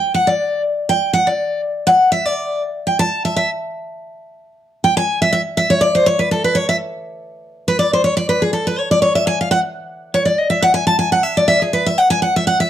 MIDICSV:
0, 0, Header, 1, 2, 480
1, 0, Start_track
1, 0, Tempo, 246204
1, 296, Time_signature, 4, 2, 24, 8
1, 24758, End_track
2, 0, Start_track
2, 0, Title_t, "Steel-string acoustic guitar"
2, 0, Program_c, 0, 25
2, 0, Note_on_c, 0, 79, 96
2, 258, Note_off_c, 0, 79, 0
2, 282, Note_on_c, 0, 78, 92
2, 529, Note_on_c, 0, 74, 83
2, 540, Note_off_c, 0, 78, 0
2, 1194, Note_off_c, 0, 74, 0
2, 1738, Note_on_c, 0, 79, 102
2, 2186, Note_off_c, 0, 79, 0
2, 2212, Note_on_c, 0, 78, 98
2, 2467, Note_off_c, 0, 78, 0
2, 2475, Note_on_c, 0, 74, 76
2, 3130, Note_off_c, 0, 74, 0
2, 3640, Note_on_c, 0, 78, 109
2, 4098, Note_off_c, 0, 78, 0
2, 4128, Note_on_c, 0, 76, 99
2, 4397, Note_off_c, 0, 76, 0
2, 4397, Note_on_c, 0, 74, 99
2, 5102, Note_off_c, 0, 74, 0
2, 5591, Note_on_c, 0, 79, 89
2, 5826, Note_off_c, 0, 79, 0
2, 5834, Note_on_c, 0, 81, 125
2, 6286, Note_off_c, 0, 81, 0
2, 6333, Note_on_c, 0, 76, 94
2, 6537, Note_off_c, 0, 76, 0
2, 6560, Note_on_c, 0, 76, 98
2, 6805, Note_off_c, 0, 76, 0
2, 9436, Note_on_c, 0, 79, 97
2, 9680, Note_off_c, 0, 79, 0
2, 9687, Note_on_c, 0, 80, 110
2, 10134, Note_off_c, 0, 80, 0
2, 10171, Note_on_c, 0, 76, 99
2, 10359, Note_off_c, 0, 76, 0
2, 10383, Note_on_c, 0, 76, 101
2, 10540, Note_off_c, 0, 76, 0
2, 10863, Note_on_c, 0, 76, 101
2, 11113, Note_on_c, 0, 73, 104
2, 11117, Note_off_c, 0, 76, 0
2, 11325, Note_on_c, 0, 74, 101
2, 11335, Note_off_c, 0, 73, 0
2, 11588, Note_off_c, 0, 74, 0
2, 11597, Note_on_c, 0, 72, 105
2, 11817, Note_off_c, 0, 72, 0
2, 11820, Note_on_c, 0, 73, 118
2, 12069, Note_on_c, 0, 71, 104
2, 12075, Note_off_c, 0, 73, 0
2, 12292, Note_off_c, 0, 71, 0
2, 12307, Note_on_c, 0, 69, 95
2, 12554, Note_off_c, 0, 69, 0
2, 12561, Note_on_c, 0, 71, 98
2, 12768, Note_on_c, 0, 73, 95
2, 12779, Note_off_c, 0, 71, 0
2, 13029, Note_off_c, 0, 73, 0
2, 13039, Note_on_c, 0, 76, 110
2, 13174, Note_off_c, 0, 76, 0
2, 14970, Note_on_c, 0, 71, 97
2, 15178, Note_off_c, 0, 71, 0
2, 15186, Note_on_c, 0, 74, 97
2, 15438, Note_off_c, 0, 74, 0
2, 15467, Note_on_c, 0, 72, 88
2, 15667, Note_off_c, 0, 72, 0
2, 15675, Note_on_c, 0, 73, 91
2, 15914, Note_off_c, 0, 73, 0
2, 15922, Note_on_c, 0, 74, 98
2, 16138, Note_off_c, 0, 74, 0
2, 16160, Note_on_c, 0, 71, 89
2, 16405, Note_off_c, 0, 71, 0
2, 16414, Note_on_c, 0, 68, 80
2, 16620, Note_off_c, 0, 68, 0
2, 16628, Note_on_c, 0, 69, 79
2, 16878, Note_off_c, 0, 69, 0
2, 16900, Note_on_c, 0, 71, 89
2, 17130, Note_off_c, 0, 71, 0
2, 17130, Note_on_c, 0, 73, 88
2, 17365, Note_off_c, 0, 73, 0
2, 17373, Note_on_c, 0, 74, 106
2, 17575, Note_off_c, 0, 74, 0
2, 17583, Note_on_c, 0, 73, 87
2, 17835, Note_off_c, 0, 73, 0
2, 17845, Note_on_c, 0, 76, 94
2, 18059, Note_off_c, 0, 76, 0
2, 18070, Note_on_c, 0, 80, 100
2, 18319, Note_off_c, 0, 80, 0
2, 18340, Note_on_c, 0, 77, 91
2, 18532, Note_off_c, 0, 77, 0
2, 18540, Note_on_c, 0, 78, 107
2, 18697, Note_off_c, 0, 78, 0
2, 19770, Note_on_c, 0, 73, 100
2, 19981, Note_off_c, 0, 73, 0
2, 19991, Note_on_c, 0, 74, 88
2, 20257, Note_off_c, 0, 74, 0
2, 20257, Note_on_c, 0, 75, 98
2, 20460, Note_off_c, 0, 75, 0
2, 20468, Note_on_c, 0, 76, 92
2, 20713, Note_on_c, 0, 78, 111
2, 20717, Note_off_c, 0, 76, 0
2, 20929, Note_off_c, 0, 78, 0
2, 20937, Note_on_c, 0, 80, 97
2, 21179, Note_off_c, 0, 80, 0
2, 21187, Note_on_c, 0, 81, 114
2, 21409, Note_off_c, 0, 81, 0
2, 21421, Note_on_c, 0, 80, 91
2, 21672, Note_off_c, 0, 80, 0
2, 21680, Note_on_c, 0, 78, 94
2, 21894, Note_off_c, 0, 78, 0
2, 21894, Note_on_c, 0, 76, 85
2, 22149, Note_off_c, 0, 76, 0
2, 22168, Note_on_c, 0, 74, 89
2, 22378, Note_on_c, 0, 76, 106
2, 22379, Note_off_c, 0, 74, 0
2, 22631, Note_off_c, 0, 76, 0
2, 22652, Note_on_c, 0, 68, 56
2, 22861, Note_off_c, 0, 68, 0
2, 22873, Note_on_c, 0, 71, 92
2, 23119, Note_off_c, 0, 71, 0
2, 23130, Note_on_c, 0, 76, 95
2, 23354, Note_off_c, 0, 76, 0
2, 23354, Note_on_c, 0, 78, 93
2, 23587, Note_off_c, 0, 78, 0
2, 23594, Note_on_c, 0, 80, 110
2, 23811, Note_off_c, 0, 80, 0
2, 23824, Note_on_c, 0, 78, 90
2, 24073, Note_off_c, 0, 78, 0
2, 24102, Note_on_c, 0, 76, 100
2, 24303, Note_off_c, 0, 76, 0
2, 24311, Note_on_c, 0, 78, 100
2, 24556, Note_off_c, 0, 78, 0
2, 24567, Note_on_c, 0, 76, 104
2, 24758, Note_off_c, 0, 76, 0
2, 24758, End_track
0, 0, End_of_file